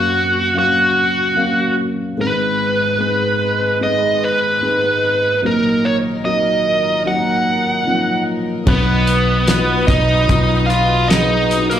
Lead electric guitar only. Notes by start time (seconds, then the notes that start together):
Already playing: F#4
0.59 F#4
2.21 B4
3.83 D#5
4.24 B4
5.46 A#4
5.85 C#5
6.25 D#5
7.08 F#5
8.68 B3 B4
9.87 D#4 D#5
10.66 F4 F5
11.08 D#4 D#5
11.70 A#3 A#4